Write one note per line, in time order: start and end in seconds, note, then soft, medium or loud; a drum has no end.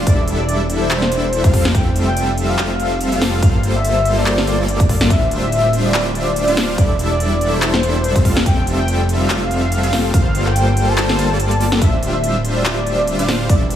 0.07 1.52 E1 medium
0.07 0.88 G3 medium
0.07 0.88 D4 medium
0.07 0.88 E4 medium
0.07 0.88 A4 medium
0.07 0.24 D5 loud
0.07 0.88 E5 loud
0.07 kick loud
0.07 closed hi-hat medium
0.28 closed hi-hat medium
0.39 0.61 D5 medium
0.49 closed hi-hat medium
0.70 closed hi-hat medium
0.81 1.67 C5 loud
0.91 1.41 G3 loud
0.91 1.41 D4 medium
0.91 1.41 E4 medium
0.91 1.41 A4 medium
0.91 1.41 E5 loud
0.91 clap loud
0.91 closed hi-hat medium
1.02 snare medium
1.12 closed hi-hat medium
1.33 closed hi-hat medium
1.44 1.72 G3 medium
1.44 1.72 C4 medium
1.44 1.72 F4 medium
1.44 1.72 A4 medium
1.44 1.72 F5 medium
1.44 kick loud
1.44 closed hi-hat medium
1.54 3.41 F1 medium
1.54 kick medium
1.54 open hi-hat medium
1.65 snare medium
1.75 2.56 G3 medium
1.75 2.56 C4 medium
1.75 2.56 F4 medium
1.75 2.56 A4 medium
1.75 2.56 E5 loud
1.75 1.92 G5 loud
1.75 kick loud
1.75 closed hi-hat medium
1.96 closed hi-hat medium
2.07 2.29 G5 medium
2.17 closed hi-hat medium
2.38 closed hi-hat medium
2.49 3.35 F5 loud
2.59 3.09 G3 loud
2.59 3.09 C4 medium
2.59 3.09 F4 medium
2.59 3.09 A4 medium
2.59 3.09 E5 loud
2.59 clap loud
2.59 closed hi-hat medium
2.80 closed hi-hat medium
3.01 closed hi-hat medium
3.12 3.40 G3 medium
3.12 3.40 C4 medium
3.12 3.40 F4 medium
3.12 3.40 A4 medium
3.12 3.40 F5 medium
3.12 closed hi-hat medium
3.22 snare medium
3.22 open hi-hat medium
3.42 5.08 G1 medium
3.42 4.24 G3 medium
3.42 4.24 A#3 medium
3.42 4.24 F4 medium
3.42 4.24 A4 medium
3.42 4.24 C5 medium
3.42 3.60 F5 loud
3.42 kick loud
3.42 closed hi-hat medium
3.63 closed hi-hat medium
3.75 4.19 E5 loud
3.85 closed hi-hat medium
4.05 closed hi-hat medium
4.17 5.03 D5 loud
4.26 4.45 G3 loud
4.26 4.45 A#3 medium
4.26 4.45 F4 medium
4.26 4.45 A4 medium
4.26 4.45 C5 loud
4.26 clap loud
4.26 closed hi-hat medium
4.38 snare medium
4.47 4.56 G3 medium
4.47 4.56 A#3 medium
4.47 4.56 F4 medium
4.47 4.56 A4 medium
4.47 4.56 C5 loud
4.47 closed hi-hat medium
4.59 5.08 G3 medium
4.59 5.08 A#3 medium
4.59 5.08 F4 medium
4.59 5.08 A4 medium
4.59 5.08 D5 loud
4.68 closed hi-hat medium
4.80 kick loud
4.80 closed hi-hat medium
4.89 kick medium
4.89 open hi-hat medium
5.01 snare medium
5.10 6.76 D1 medium
5.10 5.92 G3 medium
5.10 5.92 D4 medium
5.10 5.92 F4 medium
5.10 5.92 C5 medium
5.10 5.92 E5 medium
5.10 5.28 E5 loud
5.10 kick loud
5.10 closed hi-hat medium
5.31 closed hi-hat medium
5.43 5.86 E5 loud
5.52 closed hi-hat medium
5.73 closed hi-hat medium
5.85 6.71 D5 loud
5.94 6.45 G3 loud
5.94 6.45 D4 medium
5.94 6.45 F4 medium
5.94 6.45 C5 medium
5.94 6.45 E5 loud
5.94 clap loud
5.94 closed hi-hat medium
6.15 closed hi-hat medium
6.36 closed hi-hat medium
6.48 6.76 G3 medium
6.48 6.76 D4 medium
6.48 6.76 F4 medium
6.48 6.76 C5 medium
6.48 6.76 F5 medium
6.48 closed hi-hat medium
6.57 snare medium
6.57 open hi-hat medium
6.78 8.23 E1 medium
6.78 7.60 G3 medium
6.78 7.60 D4 medium
6.78 7.60 E4 medium
6.78 7.60 A4 medium
6.78 6.95 D5 loud
6.78 7.60 E5 loud
6.78 kick loud
6.78 closed hi-hat medium
6.99 closed hi-hat medium
7.11 7.54 D5 loud
7.20 closed hi-hat medium
7.41 closed hi-hat medium
7.53 8.38 C5 loud
7.62 8.13 G3 loud
7.62 8.13 D4 medium
7.62 8.13 E4 medium
7.62 8.13 A4 medium
7.62 8.13 E5 loud
7.62 clap loud
7.62 closed hi-hat medium
7.74 snare medium
7.83 closed hi-hat medium
8.04 closed hi-hat medium
8.16 8.44 G3 medium
8.16 8.44 C4 medium
8.16 8.44 F4 medium
8.16 8.44 A4 medium
8.16 8.44 F5 medium
8.16 kick loud
8.16 closed hi-hat medium
8.25 10.12 F1 medium
8.25 kick medium
8.25 open hi-hat loud
8.37 snare medium
8.46 9.28 G3 medium
8.46 9.28 C4 medium
8.46 9.28 F4 medium
8.46 9.28 A4 medium
8.46 9.28 E5 medium
8.46 8.63 G5 loud
8.46 kick loud
8.46 closed hi-hat medium
8.67 closed hi-hat medium
8.79 9.01 G5 loud
8.88 closed hi-hat medium
9.09 closed hi-hat medium
9.20 10.06 F5 loud
9.30 9.81 G3 loud
9.30 9.81 C4 medium
9.30 9.81 F4 medium
9.30 9.81 A4 medium
9.30 9.81 E5 loud
9.30 clap loud
9.30 closed hi-hat medium
9.51 closed hi-hat medium
9.72 closed hi-hat medium
9.83 10.12 G3 medium
9.83 10.12 C4 medium
9.83 10.12 F4 medium
9.83 10.12 A4 medium
9.83 10.12 F5 medium
9.83 closed hi-hat medium
9.93 snare medium
9.93 open hi-hat loud
10.14 11.80 G1 medium
10.14 10.95 G3 medium
10.14 10.95 A#3 medium
10.14 10.95 F4 medium
10.14 10.95 A4 medium
10.14 10.95 C5 loud
10.14 10.48 F5 loud
10.14 kick loud
10.14 closed hi-hat medium
10.35 closed hi-hat medium
10.46 10.90 G5 loud
10.46 clap soft
10.56 closed hi-hat medium
10.77 closed hi-hat medium
10.88 11.74 A5 loud
10.98 11.17 G3 loud
10.98 11.17 A#3 medium
10.98 11.17 F4 medium
10.98 11.17 A4 medium
10.98 11.17 C5 loud
10.98 clap loud
10.98 closed hi-hat medium
11.09 snare medium
11.19 11.27 G3 medium
11.19 11.27 A#3 medium
11.19 11.27 F4 medium
11.19 11.27 A4 medium
11.19 11.27 C5 loud
11.19 closed hi-hat medium
11.30 11.79 G3 loud
11.30 11.79 A#3 medium
11.30 11.79 F4 medium
11.30 11.79 A4 medium
11.30 11.79 D5 loud
11.40 closed hi-hat medium
11.51 closed hi-hat medium
11.61 open hi-hat medium
11.72 snare medium
11.82 13.48 D1 medium
11.82 12.63 G3 medium
11.82 12.63 D4 medium
11.82 12.63 F4 medium
11.82 12.63 C5 medium
11.82 12.63 E5 medium
11.82 11.99 E5 loud
11.82 kick loud
11.82 closed hi-hat medium
12.03 closed hi-hat medium
12.14 12.36 E5 medium
12.24 closed hi-hat medium
12.45 closed hi-hat medium
12.56 13.42 D5 loud
12.65 13.16 G3 loud
12.65 13.16 D4 medium
12.65 13.16 F4 medium
12.65 13.16 C5 medium
12.65 13.16 E5 loud
12.65 clap loud
12.65 closed hi-hat medium
12.87 closed hi-hat medium
13.07 closed hi-hat medium
13.19 13.47 G3 medium
13.19 13.47 D4 medium
13.19 13.47 F4 medium
13.19 13.47 C5 medium
13.19 13.47 F5 medium
13.19 closed hi-hat medium
13.28 snare medium
13.28 open hi-hat medium
13.49 13.76 E1 medium
13.49 13.76 G3 medium
13.49 13.76 D4 medium
13.49 13.76 E4 medium
13.49 13.76 A4 medium
13.49 13.67 D5 loud
13.49 13.76 E5 loud
13.49 kick loud
13.49 closed hi-hat medium
13.70 closed hi-hat medium